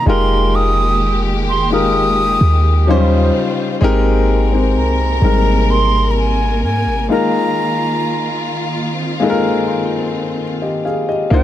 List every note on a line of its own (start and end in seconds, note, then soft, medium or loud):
0.00 2.84 D#3 medium
0.06 2.37 F1 loud
0.06 1.47 G#3 medium
0.06 2.85 G#3 medium
0.06 2.85 A#3 medium
0.06 1.48 D#4 medium
0.06 1.48 F4 medium
0.06 2.85 G4 medium
0.06 1.49 G4 medium
0.06 1.49 A#4 loud
0.06 0.57 C6 loud
0.55 1.21 D#6 loud
1.49 1.70 C6 loud
1.70 2.88 G#3 medium
1.70 2.87 D#4 medium
1.70 2.88 F4 medium
1.70 2.89 G4 medium
1.70 2.89 A#4 medium
1.70 3.08 D#6 loud
2.41 3.31 D#2 loud
2.87 3.81 C#3 medium
2.87 2.94 F#3 medium
2.87 3.81 G3 medium
2.87 3.69 C#4 medium
2.87 3.69 D#4 medium
2.87 3.81 F4 medium
2.87 3.69 F4 medium
2.87 3.81 C5 medium
2.87 3.70 C5 loud
2.93 3.71 G3 loud
3.81 4.77 G#1 loud
3.81 7.06 C3 medium
3.81 4.42 G#3 loud
3.81 8.93 A#3 medium
3.81 4.42 C4 loud
3.81 4.43 D#4 loud
3.81 4.43 G4 loud
3.81 7.06 A#4 medium
3.81 4.43 A#4 loud
4.51 5.12 G#3 medium
4.51 5.12 C4 medium
4.51 5.13 D#4 medium
4.51 5.13 G4 medium
4.51 5.14 C5 medium
4.75 5.20 C2 loud
4.75 5.72 A#5 loud
5.21 6.64 G#1 loud
5.21 6.84 G3 medium
5.21 6.83 G#3 medium
5.21 6.84 C4 medium
5.21 6.84 D#4 medium
5.21 6.85 A#4 medium
5.71 6.12 C6 loud
6.11 6.19 A#5 medium
6.18 6.64 G#5 loud
6.63 6.87 G#2 loud
6.63 7.07 G#5 loud
6.86 7.08 G#1 loud
7.08 11.28 D#3 medium
7.08 8.71 G#3 medium
7.08 8.71 A#3 medium
7.08 8.71 D#4 medium
7.08 11.28 F4 medium
7.08 8.72 F4 medium
7.08 8.72 A#4 medium
7.08 8.94 A#5 loud
8.97 11.29 C4 medium
9.20 10.82 G#3 medium
9.20 10.82 A#3 medium
9.20 10.82 D#4 medium
9.20 10.83 F4 medium
9.20 9.28 A4 medium
9.30 10.42 A#4 loud
10.62 10.84 G4 medium
10.62 10.84 D#5 medium
10.85 11.07 G#4 medium
10.85 11.07 F5 medium
11.09 11.43 G4 medium
11.09 11.43 D#5 medium
11.30 11.43 C2 loud
11.30 11.43 A#3 loud
11.30 11.43 D4 medium
11.30 11.43 D#4 medium
11.30 11.43 F4 medium
11.30 11.43 C5 loud
11.30 11.43 G5 medium